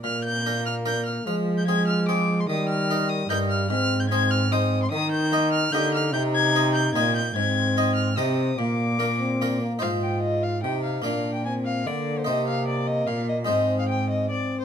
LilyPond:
<<
  \new Staff \with { instrumentName = "Violin" } { \time 3/4 \key aes \lydian \tempo 4 = 148 f'''8 g'''4 f'''8 g'''8 f'''8 | f'''8. g'''16 aes'''8 f'''8 d'''8. c'''16 | ees'''8 f'''4 ees'''8 g'''8 f'''8 | f'''8. g'''16 aes'''8 f'''8 ees'''8. c'''16 |
ees'''8 g'''4 f'''8 g'''8 f'''8 | g'''8 aes'''4 g'''8 aes'''8 g'''8 | aes'''4. f'''8 ees'''4 | d'''2~ d'''8 r8 |
f''8 g''8 ees''8 f''8 g''8 f''8 | f''8. g''16 aes''8 f''8 d''8. c''16 | ees''8 f''8 d''8 ees''8 f''8 ees''8 | ees''8. f''16 g''8 ees''8 d''8. c''16 | }
  \new Staff \with { instrumentName = "Harpsichord" } { \time 3/4 \key aes \lydian r4 <d' bes'>4 <d' bes'>4 | r4 <c' aes'>4 <c' aes'>4 | r4 <ees' bes'>4 <ees' bes'>4 | r4 <aes ees' c''>4 <aes ees' c''>4 |
r4 <bes ees' ees''>4 <bes g' ees''>4 | r4 <c' ees' ees''>4 <c' ees' ees''>4 | r4 <c' ees' ees''>4 <c' ees' ees''>4 | r4 <bes d' bes'>4 <bes d' bes'>4 |
<ees' c''>2. | <bes d' d''>2. | <ees' c''>2. | <aes ees' c''>2. | }
  \new Staff \with { instrumentName = "Harpsichord" } { \clef bass \time 3/4 \key aes \lydian bes,2. | f2. | ees2 g,4 | aes,2. |
ees2 d4 | c2 bes,4 | aes,2 c4 | bes,2~ bes,8 r8 |
aes,2 c4 | bes,2 d4 | c2 bes,4 | aes,2. | }
  \new Staff \with { instrumentName = "Trombone" } { \time 3/4 \key aes \lydian bes2. | aes4 aes2 | g2 g4 | c'4 c'4 c'4 |
ees'2 ees'4 | ees'2~ ees'8 r8 | c'2 c'4 | bes4 bes8 c'4 bes8 |
f'2 ees'4 | d'4 c'4 bes4~ | bes2. | c'2 c'4 | }
  \new Staff \with { instrumentName = "Cello" } { \clef bass \time 3/4 \key aes \lydian bes,2. | f2. | ees2 g,4 | aes,2. |
ees2 d4 | c2 bes,4 | aes,2 c4 | bes,2~ bes,8 r8 |
aes,2 c4 | bes,2 d4 | c2 bes,4 | aes,2. | }
>>